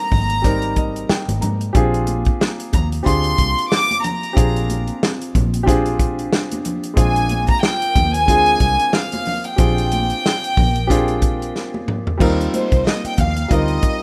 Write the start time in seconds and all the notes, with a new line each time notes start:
Already playing: G3 C4 D4 D#4 A4 A#4 A#5
0.11 G#1, kick, open hi-hat, muted conga, high conga, low conga
0.30 closed hi-hat
0.42 G3 C4 D#4 A#4 D5, kick, snare, closed hi-hat, muted conga
0.62 closed hi-hat
0.76 D#5, kick, closed hi-hat, muted conga
0.96 closed hi-hat
1.09 G5, muted fingered electric bass stroke, snare, muted conga
1.28 G#1, closed hi-hat, high conga
1.41 G#2 A#5, closed hi-hat, low conga
1.61 closed hi-hat
1.73 A#1 C4 D4 F4 G4 G#4, kick, closed hi-hat, muted conga
1.94 closed hi-hat
2.07 closed hi-hat, high conga
2.25 kick, closed hi-hat
2.41 A#3, snare, muted conga
2.60 closed hi-hat
2.73 D#2 A#5, kick, closed hi-hat, muted conga, high conga, low conga
2.92 closed hi-hat
3.03 D2 C4 D4 F4 G4 G#4 C6, kick, snare, muted conga
3.07 closed hi-hat
3.24 closed hi-hat
3.38 C2, kick, closed hi-hat, muted conga
3.58 closed hi-hat
3.72 D6, snare, muted conga
3.91 closed hi-hat, high conga
4.04 A#5, closed hi-hat, low conga
4.23 closed hi-hat
4.33 C4 D4 F4 G4 G#4, kick
4.37 A#1, closed hi-hat
4.56 closed hi-hat
4.63 F4
4.70 closed hi-hat, high conga
4.87 closed hi-hat
5.03 snare, muted conga
5.21 closed hi-hat
5.35 A#1, kick, closed hi-hat, muted conga, high conga, low conga
5.54 closed hi-hat
5.63 C4 D4 F4 G4
5.67 G#4, kick, snare, closed hi-hat
5.86 closed hi-hat
5.99 kick, closed hi-hat, muted conga
6.19 closed hi-hat
6.33 snare, muted conga
6.51 closed hi-hat, high conga
6.65 closed hi-hat, low conga
6.83 closed hi-hat
6.94 A#1 G#3 C4 D4 F4 G#4, kick, closed hi-hat
6.99 G#5
7.16 closed hi-hat
7.29 closed hi-hat, muted conga, high conga
7.47 A#5, kick, closed hi-hat
7.63 F4 G5, snare, muted conga
7.82 closed hi-hat
7.87 A#4
7.95 D#2, kick, closed hi-hat, muted conga, high conga, low conga
8.09 C5
8.14 G#5, closed hi-hat
8.26 D2 G#3 C4 D4 F4 G#4, kick, closed hi-hat
8.46 closed hi-hat
8.60 C2, kick, closed hi-hat, muted conga
8.79 closed hi-hat
8.93 F5, snare, muted conga
9.12 closed hi-hat, high conga
9.25 open hi-hat, low conga
9.44 G5, closed hi-hat
9.56 A#1 C4 D4 F4 G4 G#4, kick, closed hi-hat
9.61 muted conga, low conga
9.78 closed hi-hat
9.91 closed hi-hat, muted conga, high conga
10.10 closed hi-hat
10.26 snare, muted conga
10.44 closed hi-hat
10.57 A#1 A#4, kick, open hi-hat, muted conga, high conga, low conga
10.76 closed hi-hat
10.87 C4 D4 F4 G4 G#4, kick, snare, closed hi-hat
11.08 closed hi-hat
11.22 kick, closed hi-hat
11.42 closed hi-hat
11.56 snare, muted conga
11.74 high conga
11.88 mid tom, low conga
12.07 floor tom
12.18 D#2 G3 C4 D#4 F4, kick, crash
12.22 A#4
12.41 closed hi-hat
12.54 C5 D#5, closed hi-hat, muted conga, high conga
12.72 C2, kick, closed hi-hat
12.87 D#5, snare, muted conga, high conga
13.04 G5, muted fingered electric bass stroke, closed hi-hat
13.18 D#2 F5 G5, kick, closed hi-hat, muted conga, high conga, low conga
13.36 closed hi-hat
13.44 A#5
13.48 D2 G3 C4 D#4 F4 A#4 D#5, kick, closed hi-hat
13.63 C6
13.68 closed hi-hat
13.82 D#5, kick, closed hi-hat, muted conga